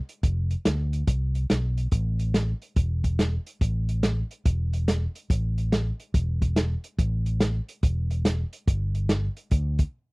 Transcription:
0.09 closed hi-hat
0.23 F1, kick, closed hi-hat
0.51 closed hi-hat
0.65 D2, snare, closed hi-hat
0.93 closed hi-hat
1.07 C2, kick, closed hi-hat
1.35 closed hi-hat
1.50 B1, snare, closed hi-hat
1.77 closed hi-hat
1.91 A1, kick, closed hi-hat
2.19 closed hi-hat
2.34 snare, closed hi-hat
2.62 closed hi-hat
2.76 E1, kick, closed hi-hat
3.04 kick, closed hi-hat
3.19 snare, closed hi-hat
3.46 closed hi-hat
3.61 A1, kick, closed hi-hat
3.89 closed hi-hat
4.03 snare, closed hi-hat
4.31 closed hi-hat
4.45 E1, kick, closed hi-hat
4.73 closed hi-hat
4.88 snare, closed hi-hat
5.15 closed hi-hat
5.30 A1, kick, closed hi-hat
5.58 closed hi-hat
5.72 snare, closed hi-hat
6.00 closed hi-hat
6.14 E1, kick, closed hi-hat
6.42 kick, closed hi-hat
6.56 snare, closed hi-hat
6.84 closed hi-hat
6.99 A1, kick, closed hi-hat
7.26 closed hi-hat
7.40 snare, closed hi-hat
7.68 closed hi-hat
7.83 E1, kick, closed hi-hat
8.11 closed hi-hat
8.25 snare, closed hi-hat
8.53 closed hi-hat
8.68 G1, kick, closed hi-hat
8.95 closed hi-hat
9.09 snare, closed hi-hat
9.37 closed hi-hat
9.51 D2, kick, closed hi-hat
9.79 kick, closed hi-hat

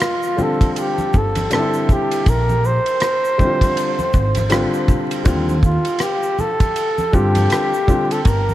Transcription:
Already playing: F4
0.00 cross-stick, hi-hat pedal, ride, shaker
0.23 shaker
0.37 D3 G3 C4 F4, high conga, low conga, shaker
0.42 A4
0.61 kick, ride, high conga, shaker
0.74 A4, ride, shaker
0.79 G4
0.98 high conga, shaker
1.14 G1, kick, shaker
1.18 A4
1.35 cross-stick, ride, high conga, shaker
1.50 D3 G3 C4 D4 A4, cross-stick, hi-hat pedal, ride, shaker
1.59 E4
1.74 shaker
1.89 G4, kick, low conga, shaker
2.11 ride, shaker
2.26 A#1 A#4, kick, ride, shaker
2.49 high conga, shaker
2.65 C5, shaker
2.86 ride, shaker
3.00 cross-stick, hi-hat pedal, ride, shaker
3.25 shaker
3.38 D3 G3 C4 E4, kick, high conga, low conga, shaker
3.46 F4
3.61 kick, ride, high conga, shaker
3.77 ride, shaker
3.99 high conga, shaker
4.13 G#1, kick, shaker
4.35 cross-stick, ride, high conga, shaker
4.50 D3 G3 C4 F4, cross-stick, hi-hat pedal, ride, shaker
4.74 shaker
4.88 kick, low conga, shaker
5.11 ride, shaker
5.24 D#2 D3 G3 C4 F4, kick, ride, shaker
5.49 high conga, shaker
5.63 F4, kick, shaker
5.85 ride, shaker
5.99 G4, cross-stick, hi-hat pedal, ride, shaker
6.23 shaker
6.39 A4, high conga, low conga, shaker
6.60 kick, ride, high conga, shaker
6.76 ride, shaker
6.98 high conga, shaker
7.12 G2 D3 G3 C4 F4 G4, kick, shaker
7.35 ride, high conga, shaker
7.50 cross-stick, hi-hat pedal, ride, shaker
7.74 shaker
7.87 D3 G3 C4 F4, kick, low conga, shaker
8.11 A4, ride, shaker
8.23 G1 A4, kick, ride
8.27 A#4, shaker
8.49 high conga, shaker

